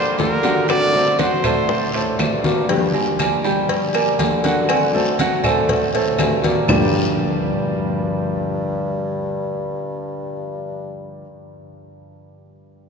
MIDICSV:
0, 0, Header, 1, 7, 480
1, 0, Start_track
1, 0, Key_signature, -2, "minor"
1, 0, Tempo, 499584
1, 663, Time_signature, 4, 2, 24, 8
1, 12386, End_track
2, 0, Start_track
2, 0, Title_t, "Trumpet"
2, 0, Program_c, 0, 56
2, 0, Note_on_c, 0, 72, 93
2, 176, Note_off_c, 0, 72, 0
2, 182, Note_on_c, 0, 70, 83
2, 629, Note_off_c, 0, 70, 0
2, 667, Note_on_c, 0, 74, 107
2, 1112, Note_off_c, 0, 74, 0
2, 1150, Note_on_c, 0, 72, 75
2, 2070, Note_off_c, 0, 72, 0
2, 12386, End_track
3, 0, Start_track
3, 0, Title_t, "Grand piano"
3, 0, Program_c, 1, 0
3, 0, Note_on_c, 1, 58, 86
3, 0, Note_on_c, 1, 70, 81
3, 0, Note_on_c, 1, 74, 78
3, 338, Note_off_c, 1, 58, 0
3, 340, Note_off_c, 1, 70, 0
3, 342, Note_off_c, 1, 74, 0
3, 427, Note_on_c, 1, 54, 92
3, 429, Note_on_c, 1, 66, 83
3, 433, Note_on_c, 1, 78, 89
3, 820, Note_off_c, 1, 54, 0
3, 821, Note_off_c, 1, 66, 0
3, 823, Note_off_c, 1, 78, 0
3, 909, Note_on_c, 1, 57, 68
3, 913, Note_on_c, 1, 69, 74
3, 915, Note_on_c, 1, 72, 73
3, 1103, Note_off_c, 1, 57, 0
3, 1106, Note_off_c, 1, 69, 0
3, 1107, Note_off_c, 1, 72, 0
3, 1146, Note_on_c, 1, 54, 76
3, 1149, Note_on_c, 1, 66, 83
3, 1152, Note_on_c, 1, 78, 86
3, 1342, Note_off_c, 1, 54, 0
3, 1344, Note_off_c, 1, 66, 0
3, 1346, Note_off_c, 1, 78, 0
3, 1388, Note_on_c, 1, 57, 81
3, 1392, Note_on_c, 1, 69, 83
3, 1395, Note_on_c, 1, 72, 80
3, 1781, Note_off_c, 1, 57, 0
3, 1783, Note_off_c, 1, 69, 0
3, 1784, Note_off_c, 1, 72, 0
3, 1874, Note_on_c, 1, 57, 71
3, 1876, Note_on_c, 1, 69, 85
3, 1879, Note_on_c, 1, 72, 78
3, 2264, Note_off_c, 1, 57, 0
3, 2266, Note_off_c, 1, 69, 0
3, 2267, Note_off_c, 1, 72, 0
3, 2352, Note_on_c, 1, 58, 83
3, 2354, Note_on_c, 1, 70, 72
3, 2358, Note_on_c, 1, 74, 83
3, 2546, Note_off_c, 1, 58, 0
3, 2548, Note_off_c, 1, 70, 0
3, 2550, Note_off_c, 1, 74, 0
3, 2591, Note_on_c, 1, 55, 72
3, 2595, Note_on_c, 1, 67, 72
3, 2598, Note_on_c, 1, 79, 79
3, 2983, Note_off_c, 1, 55, 0
3, 2985, Note_off_c, 1, 67, 0
3, 2987, Note_off_c, 1, 79, 0
3, 3072, Note_on_c, 1, 58, 68
3, 3074, Note_on_c, 1, 70, 76
3, 3078, Note_on_c, 1, 74, 74
3, 3267, Note_off_c, 1, 58, 0
3, 3268, Note_off_c, 1, 70, 0
3, 3270, Note_off_c, 1, 74, 0
3, 3312, Note_on_c, 1, 55, 98
3, 3316, Note_on_c, 1, 67, 86
3, 3318, Note_on_c, 1, 79, 85
3, 3703, Note_off_c, 1, 55, 0
3, 3706, Note_off_c, 1, 67, 0
3, 3707, Note_off_c, 1, 79, 0
3, 3791, Note_on_c, 1, 58, 77
3, 3793, Note_on_c, 1, 70, 80
3, 3796, Note_on_c, 1, 74, 75
3, 4183, Note_off_c, 1, 58, 0
3, 4184, Note_off_c, 1, 70, 0
3, 4186, Note_off_c, 1, 74, 0
3, 4274, Note_on_c, 1, 54, 91
3, 4274, Note_on_c, 1, 66, 95
3, 4279, Note_on_c, 1, 78, 90
3, 4665, Note_off_c, 1, 54, 0
3, 4665, Note_off_c, 1, 66, 0
3, 4668, Note_off_c, 1, 78, 0
3, 4750, Note_on_c, 1, 57, 78
3, 4755, Note_on_c, 1, 69, 79
3, 4755, Note_on_c, 1, 72, 76
3, 4946, Note_off_c, 1, 57, 0
3, 4949, Note_off_c, 1, 69, 0
3, 4949, Note_off_c, 1, 72, 0
3, 4997, Note_on_c, 1, 54, 93
3, 5000, Note_on_c, 1, 66, 83
3, 5003, Note_on_c, 1, 78, 85
3, 5190, Note_off_c, 1, 54, 0
3, 5191, Note_off_c, 1, 66, 0
3, 5194, Note_off_c, 1, 78, 0
3, 5232, Note_on_c, 1, 57, 84
3, 5236, Note_on_c, 1, 69, 84
3, 5239, Note_on_c, 1, 72, 85
3, 5624, Note_off_c, 1, 57, 0
3, 5626, Note_off_c, 1, 69, 0
3, 5628, Note_off_c, 1, 72, 0
3, 5712, Note_on_c, 1, 57, 82
3, 5715, Note_on_c, 1, 69, 80
3, 5720, Note_on_c, 1, 72, 75
3, 6103, Note_off_c, 1, 57, 0
3, 6106, Note_off_c, 1, 69, 0
3, 6108, Note_off_c, 1, 72, 0
3, 6192, Note_on_c, 1, 58, 79
3, 6194, Note_on_c, 1, 70, 80
3, 6198, Note_on_c, 1, 74, 74
3, 6387, Note_off_c, 1, 58, 0
3, 6388, Note_off_c, 1, 70, 0
3, 6390, Note_off_c, 1, 74, 0
3, 6423, Note_on_c, 1, 55, 86
3, 6427, Note_on_c, 1, 62, 75
3, 6427, Note_on_c, 1, 65, 73
3, 6431, Note_on_c, 1, 67, 75
3, 6432, Note_on_c, 1, 70, 74
3, 6435, Note_on_c, 1, 74, 91
3, 10766, Note_off_c, 1, 55, 0
3, 10769, Note_off_c, 1, 62, 0
3, 10770, Note_off_c, 1, 65, 0
3, 10773, Note_off_c, 1, 67, 0
3, 10774, Note_off_c, 1, 70, 0
3, 10778, Note_off_c, 1, 74, 0
3, 12386, End_track
4, 0, Start_track
4, 0, Title_t, "Nylon-string guitar"
4, 0, Program_c, 2, 24
4, 177, Note_on_c, 2, 53, 47
4, 187, Note_on_c, 2, 58, 58
4, 189, Note_on_c, 2, 62, 61
4, 195, Note_on_c, 2, 67, 52
4, 398, Note_off_c, 2, 67, 0
4, 407, Note_off_c, 2, 62, 0
4, 409, Note_on_c, 2, 67, 71
4, 410, Note_off_c, 2, 53, 0
4, 411, Note_off_c, 2, 58, 0
4, 419, Note_on_c, 2, 62, 65
4, 423, Note_on_c, 2, 58, 68
4, 430, Note_on_c, 2, 53, 64
4, 647, Note_off_c, 2, 67, 0
4, 650, Note_off_c, 2, 53, 0
4, 651, Note_off_c, 2, 62, 0
4, 653, Note_off_c, 2, 58, 0
4, 653, Note_on_c, 2, 50, 80
4, 661, Note_on_c, 2, 57, 85
4, 665, Note_on_c, 2, 60, 89
4, 672, Note_on_c, 2, 66, 91
4, 879, Note_off_c, 2, 66, 0
4, 889, Note_off_c, 2, 50, 0
4, 891, Note_on_c, 2, 66, 65
4, 893, Note_off_c, 2, 57, 0
4, 895, Note_off_c, 2, 60, 0
4, 904, Note_on_c, 2, 60, 64
4, 913, Note_on_c, 2, 57, 52
4, 1608, Note_off_c, 2, 57, 0
4, 1608, Note_off_c, 2, 60, 0
4, 1608, Note_off_c, 2, 66, 0
4, 2095, Note_on_c, 2, 50, 48
4, 2104, Note_on_c, 2, 57, 55
4, 2109, Note_on_c, 2, 60, 53
4, 2111, Note_on_c, 2, 66, 53
4, 2330, Note_off_c, 2, 66, 0
4, 2331, Note_off_c, 2, 50, 0
4, 2335, Note_off_c, 2, 57, 0
4, 2338, Note_off_c, 2, 60, 0
4, 2341, Note_on_c, 2, 66, 78
4, 2351, Note_on_c, 2, 60, 55
4, 2357, Note_on_c, 2, 57, 55
4, 2574, Note_off_c, 2, 66, 0
4, 2579, Note_off_c, 2, 60, 0
4, 2579, Note_on_c, 2, 50, 74
4, 2582, Note_off_c, 2, 57, 0
4, 2583, Note_on_c, 2, 53, 85
4, 2588, Note_on_c, 2, 58, 81
4, 2594, Note_on_c, 2, 62, 94
4, 2599, Note_on_c, 2, 67, 85
4, 2808, Note_off_c, 2, 67, 0
4, 2813, Note_off_c, 2, 50, 0
4, 2815, Note_off_c, 2, 53, 0
4, 2817, Note_off_c, 2, 58, 0
4, 2817, Note_off_c, 2, 62, 0
4, 2820, Note_on_c, 2, 67, 72
4, 2828, Note_on_c, 2, 62, 57
4, 2833, Note_on_c, 2, 58, 58
4, 2836, Note_on_c, 2, 53, 57
4, 3526, Note_off_c, 2, 53, 0
4, 3528, Note_off_c, 2, 58, 0
4, 3534, Note_off_c, 2, 67, 0
4, 3542, Note_off_c, 2, 62, 0
4, 4019, Note_on_c, 2, 53, 51
4, 4026, Note_on_c, 2, 58, 55
4, 4031, Note_on_c, 2, 62, 55
4, 4036, Note_on_c, 2, 67, 58
4, 4250, Note_off_c, 2, 67, 0
4, 4253, Note_off_c, 2, 53, 0
4, 4255, Note_off_c, 2, 62, 0
4, 4257, Note_off_c, 2, 58, 0
4, 4261, Note_on_c, 2, 67, 68
4, 4266, Note_on_c, 2, 62, 65
4, 4277, Note_on_c, 2, 58, 59
4, 4279, Note_on_c, 2, 53, 60
4, 4495, Note_off_c, 2, 67, 0
4, 4497, Note_off_c, 2, 62, 0
4, 4498, Note_off_c, 2, 53, 0
4, 4502, Note_off_c, 2, 58, 0
4, 4502, Note_on_c, 2, 50, 77
4, 4510, Note_on_c, 2, 57, 88
4, 4515, Note_on_c, 2, 60, 86
4, 4521, Note_on_c, 2, 66, 90
4, 4725, Note_off_c, 2, 66, 0
4, 4735, Note_off_c, 2, 50, 0
4, 4736, Note_on_c, 2, 66, 69
4, 4738, Note_off_c, 2, 60, 0
4, 4739, Note_off_c, 2, 57, 0
4, 4750, Note_on_c, 2, 60, 65
4, 4755, Note_on_c, 2, 57, 58
4, 5452, Note_off_c, 2, 66, 0
4, 5457, Note_off_c, 2, 57, 0
4, 5459, Note_off_c, 2, 60, 0
4, 5940, Note_on_c, 2, 50, 50
4, 5949, Note_on_c, 2, 57, 52
4, 5951, Note_on_c, 2, 60, 59
4, 5956, Note_on_c, 2, 66, 57
4, 6160, Note_off_c, 2, 66, 0
4, 6172, Note_on_c, 2, 66, 70
4, 6174, Note_off_c, 2, 50, 0
4, 6175, Note_off_c, 2, 60, 0
4, 6179, Note_off_c, 2, 57, 0
4, 6187, Note_on_c, 2, 60, 67
4, 6196, Note_on_c, 2, 57, 53
4, 6410, Note_off_c, 2, 66, 0
4, 6416, Note_on_c, 2, 43, 80
4, 6417, Note_off_c, 2, 60, 0
4, 6420, Note_on_c, 2, 50, 75
4, 6422, Note_off_c, 2, 57, 0
4, 6425, Note_on_c, 2, 53, 90
4, 6433, Note_on_c, 2, 58, 84
4, 6441, Note_on_c, 2, 67, 94
4, 6442, Note_on_c, 2, 62, 87
4, 10797, Note_off_c, 2, 43, 0
4, 10801, Note_off_c, 2, 50, 0
4, 10806, Note_off_c, 2, 53, 0
4, 10814, Note_off_c, 2, 58, 0
4, 10822, Note_off_c, 2, 67, 0
4, 10823, Note_off_c, 2, 62, 0
4, 12386, End_track
5, 0, Start_track
5, 0, Title_t, "Bassoon"
5, 0, Program_c, 3, 70
5, 0, Note_on_c, 3, 50, 95
5, 138, Note_off_c, 3, 50, 0
5, 185, Note_on_c, 3, 50, 103
5, 1323, Note_off_c, 3, 50, 0
5, 1384, Note_on_c, 3, 50, 96
5, 1831, Note_off_c, 3, 50, 0
5, 1862, Note_on_c, 3, 45, 67
5, 2087, Note_off_c, 3, 45, 0
5, 2103, Note_on_c, 3, 43, 94
5, 2983, Note_off_c, 3, 43, 0
5, 3301, Note_on_c, 3, 55, 88
5, 3986, Note_off_c, 3, 55, 0
5, 4024, Note_on_c, 3, 50, 103
5, 5163, Note_off_c, 3, 50, 0
5, 5217, Note_on_c, 3, 50, 99
5, 5668, Note_off_c, 3, 50, 0
5, 5702, Note_on_c, 3, 45, 72
5, 5928, Note_off_c, 3, 45, 0
5, 5939, Note_on_c, 3, 43, 97
5, 6367, Note_off_c, 3, 43, 0
5, 6426, Note_on_c, 3, 43, 92
5, 10768, Note_off_c, 3, 43, 0
5, 12386, End_track
6, 0, Start_track
6, 0, Title_t, "Muted nylon-string guitar strokes"
6, 1617, Note_on_c, 9, 29, 57
6, 1713, Note_off_c, 9, 29, 0
6, 3536, Note_on_c, 9, 29, 60
6, 3632, Note_off_c, 9, 29, 0
6, 5460, Note_on_c, 9, 29, 63
6, 5556, Note_off_c, 9, 29, 0
6, 12386, End_track
7, 0, Start_track
7, 0, Title_t, "Drums"
7, 176, Note_on_c, 9, 66, 83
7, 179, Note_on_c, 9, 73, 72
7, 188, Note_on_c, 9, 60, 35
7, 188, Note_on_c, 9, 61, 82
7, 190, Note_on_c, 9, 63, 80
7, 272, Note_off_c, 9, 66, 0
7, 276, Note_off_c, 9, 73, 0
7, 284, Note_off_c, 9, 60, 0
7, 284, Note_off_c, 9, 61, 0
7, 286, Note_off_c, 9, 63, 0
7, 415, Note_on_c, 9, 73, 71
7, 420, Note_on_c, 9, 65, 63
7, 429, Note_on_c, 9, 60, 35
7, 511, Note_off_c, 9, 73, 0
7, 516, Note_off_c, 9, 65, 0
7, 526, Note_off_c, 9, 60, 0
7, 655, Note_on_c, 9, 74, 73
7, 661, Note_on_c, 9, 65, 97
7, 669, Note_on_c, 9, 75, 69
7, 671, Note_on_c, 9, 60, 75
7, 671, Note_on_c, 9, 63, 35
7, 751, Note_off_c, 9, 74, 0
7, 757, Note_off_c, 9, 65, 0
7, 765, Note_off_c, 9, 75, 0
7, 767, Note_off_c, 9, 60, 0
7, 767, Note_off_c, 9, 63, 0
7, 904, Note_on_c, 9, 60, 35
7, 913, Note_on_c, 9, 63, 36
7, 1000, Note_off_c, 9, 60, 0
7, 1009, Note_off_c, 9, 63, 0
7, 1140, Note_on_c, 9, 73, 80
7, 1145, Note_on_c, 9, 60, 60
7, 1146, Note_on_c, 9, 65, 75
7, 1146, Note_on_c, 9, 66, 67
7, 1148, Note_on_c, 9, 63, 100
7, 1236, Note_off_c, 9, 73, 0
7, 1241, Note_off_c, 9, 60, 0
7, 1242, Note_off_c, 9, 65, 0
7, 1242, Note_off_c, 9, 66, 0
7, 1245, Note_off_c, 9, 63, 0
7, 1382, Note_on_c, 9, 65, 94
7, 1382, Note_on_c, 9, 73, 69
7, 1385, Note_on_c, 9, 60, 31
7, 1387, Note_on_c, 9, 64, 85
7, 1389, Note_on_c, 9, 75, 62
7, 1478, Note_off_c, 9, 65, 0
7, 1478, Note_off_c, 9, 73, 0
7, 1481, Note_off_c, 9, 60, 0
7, 1483, Note_off_c, 9, 64, 0
7, 1485, Note_off_c, 9, 75, 0
7, 1622, Note_on_c, 9, 74, 69
7, 1624, Note_on_c, 9, 60, 65
7, 1630, Note_on_c, 9, 63, 30
7, 1718, Note_off_c, 9, 74, 0
7, 1720, Note_off_c, 9, 60, 0
7, 1726, Note_off_c, 9, 63, 0
7, 1867, Note_on_c, 9, 65, 68
7, 1868, Note_on_c, 9, 63, 36
7, 1963, Note_off_c, 9, 65, 0
7, 1964, Note_off_c, 9, 63, 0
7, 2103, Note_on_c, 9, 73, 71
7, 2106, Note_on_c, 9, 63, 75
7, 2108, Note_on_c, 9, 60, 35
7, 2108, Note_on_c, 9, 61, 74
7, 2108, Note_on_c, 9, 65, 90
7, 2108, Note_on_c, 9, 66, 77
7, 2115, Note_on_c, 9, 75, 69
7, 2199, Note_off_c, 9, 73, 0
7, 2202, Note_off_c, 9, 63, 0
7, 2204, Note_off_c, 9, 60, 0
7, 2204, Note_off_c, 9, 61, 0
7, 2204, Note_off_c, 9, 65, 0
7, 2204, Note_off_c, 9, 66, 0
7, 2211, Note_off_c, 9, 75, 0
7, 2346, Note_on_c, 9, 63, 82
7, 2348, Note_on_c, 9, 60, 76
7, 2348, Note_on_c, 9, 73, 68
7, 2442, Note_off_c, 9, 63, 0
7, 2444, Note_off_c, 9, 60, 0
7, 2444, Note_off_c, 9, 73, 0
7, 2586, Note_on_c, 9, 56, 109
7, 2587, Note_on_c, 9, 74, 71
7, 2588, Note_on_c, 9, 63, 35
7, 2588, Note_on_c, 9, 68, 73
7, 2682, Note_off_c, 9, 56, 0
7, 2683, Note_off_c, 9, 74, 0
7, 2684, Note_off_c, 9, 63, 0
7, 2684, Note_off_c, 9, 68, 0
7, 2826, Note_on_c, 9, 68, 87
7, 2833, Note_on_c, 9, 63, 34
7, 2922, Note_off_c, 9, 68, 0
7, 2929, Note_off_c, 9, 63, 0
7, 3067, Note_on_c, 9, 56, 65
7, 3070, Note_on_c, 9, 73, 83
7, 3072, Note_on_c, 9, 66, 68
7, 3072, Note_on_c, 9, 68, 105
7, 3072, Note_on_c, 9, 75, 72
7, 3073, Note_on_c, 9, 63, 95
7, 3163, Note_off_c, 9, 56, 0
7, 3166, Note_off_c, 9, 73, 0
7, 3168, Note_off_c, 9, 66, 0
7, 3168, Note_off_c, 9, 68, 0
7, 3168, Note_off_c, 9, 75, 0
7, 3169, Note_off_c, 9, 63, 0
7, 3309, Note_on_c, 9, 73, 71
7, 3316, Note_on_c, 9, 63, 33
7, 3405, Note_off_c, 9, 73, 0
7, 3412, Note_off_c, 9, 63, 0
7, 3548, Note_on_c, 9, 56, 102
7, 3548, Note_on_c, 9, 74, 66
7, 3551, Note_on_c, 9, 68, 71
7, 3553, Note_on_c, 9, 63, 34
7, 3644, Note_off_c, 9, 56, 0
7, 3644, Note_off_c, 9, 74, 0
7, 3647, Note_off_c, 9, 68, 0
7, 3650, Note_off_c, 9, 63, 0
7, 3789, Note_on_c, 9, 56, 68
7, 3792, Note_on_c, 9, 68, 99
7, 3793, Note_on_c, 9, 63, 37
7, 3793, Note_on_c, 9, 75, 64
7, 3886, Note_off_c, 9, 56, 0
7, 3889, Note_off_c, 9, 63, 0
7, 3889, Note_off_c, 9, 68, 0
7, 3889, Note_off_c, 9, 75, 0
7, 4027, Note_on_c, 9, 73, 78
7, 4028, Note_on_c, 9, 63, 85
7, 4029, Note_on_c, 9, 66, 88
7, 4029, Note_on_c, 9, 68, 78
7, 4031, Note_on_c, 9, 56, 71
7, 4123, Note_off_c, 9, 73, 0
7, 4124, Note_off_c, 9, 63, 0
7, 4126, Note_off_c, 9, 66, 0
7, 4126, Note_off_c, 9, 68, 0
7, 4127, Note_off_c, 9, 56, 0
7, 4265, Note_on_c, 9, 73, 73
7, 4267, Note_on_c, 9, 56, 69
7, 4270, Note_on_c, 9, 63, 68
7, 4361, Note_off_c, 9, 73, 0
7, 4363, Note_off_c, 9, 56, 0
7, 4366, Note_off_c, 9, 63, 0
7, 4504, Note_on_c, 9, 75, 73
7, 4505, Note_on_c, 9, 68, 110
7, 4505, Note_on_c, 9, 74, 75
7, 4511, Note_on_c, 9, 56, 108
7, 4515, Note_on_c, 9, 63, 35
7, 4600, Note_off_c, 9, 75, 0
7, 4601, Note_off_c, 9, 68, 0
7, 4601, Note_off_c, 9, 74, 0
7, 4607, Note_off_c, 9, 56, 0
7, 4611, Note_off_c, 9, 63, 0
7, 4750, Note_on_c, 9, 63, 33
7, 4846, Note_off_c, 9, 63, 0
7, 4987, Note_on_c, 9, 73, 83
7, 4988, Note_on_c, 9, 66, 65
7, 4988, Note_on_c, 9, 68, 83
7, 4990, Note_on_c, 9, 63, 107
7, 4993, Note_on_c, 9, 56, 71
7, 5083, Note_off_c, 9, 73, 0
7, 5084, Note_off_c, 9, 66, 0
7, 5084, Note_off_c, 9, 68, 0
7, 5086, Note_off_c, 9, 63, 0
7, 5089, Note_off_c, 9, 56, 0
7, 5225, Note_on_c, 9, 68, 104
7, 5229, Note_on_c, 9, 64, 86
7, 5230, Note_on_c, 9, 73, 71
7, 5232, Note_on_c, 9, 75, 66
7, 5321, Note_off_c, 9, 68, 0
7, 5325, Note_off_c, 9, 64, 0
7, 5326, Note_off_c, 9, 73, 0
7, 5328, Note_off_c, 9, 75, 0
7, 5466, Note_on_c, 9, 74, 66
7, 5468, Note_on_c, 9, 63, 35
7, 5468, Note_on_c, 9, 64, 68
7, 5469, Note_on_c, 9, 56, 114
7, 5562, Note_off_c, 9, 74, 0
7, 5564, Note_off_c, 9, 63, 0
7, 5564, Note_off_c, 9, 64, 0
7, 5565, Note_off_c, 9, 56, 0
7, 5710, Note_on_c, 9, 63, 36
7, 5714, Note_on_c, 9, 56, 79
7, 5806, Note_off_c, 9, 63, 0
7, 5810, Note_off_c, 9, 56, 0
7, 5942, Note_on_c, 9, 73, 74
7, 5943, Note_on_c, 9, 66, 86
7, 5943, Note_on_c, 9, 68, 99
7, 5948, Note_on_c, 9, 75, 76
7, 5950, Note_on_c, 9, 63, 85
7, 5955, Note_on_c, 9, 56, 69
7, 6038, Note_off_c, 9, 73, 0
7, 6039, Note_off_c, 9, 66, 0
7, 6039, Note_off_c, 9, 68, 0
7, 6044, Note_off_c, 9, 75, 0
7, 6046, Note_off_c, 9, 63, 0
7, 6051, Note_off_c, 9, 56, 0
7, 6183, Note_on_c, 9, 73, 66
7, 6191, Note_on_c, 9, 56, 69
7, 6191, Note_on_c, 9, 63, 90
7, 6279, Note_off_c, 9, 73, 0
7, 6287, Note_off_c, 9, 56, 0
7, 6287, Note_off_c, 9, 63, 0
7, 6421, Note_on_c, 9, 66, 100
7, 6423, Note_on_c, 9, 74, 98
7, 6427, Note_on_c, 9, 75, 108
7, 6428, Note_on_c, 9, 64, 103
7, 6435, Note_on_c, 9, 61, 101
7, 6517, Note_off_c, 9, 66, 0
7, 6519, Note_off_c, 9, 74, 0
7, 6524, Note_off_c, 9, 64, 0
7, 6524, Note_off_c, 9, 75, 0
7, 6531, Note_off_c, 9, 61, 0
7, 12386, End_track
0, 0, End_of_file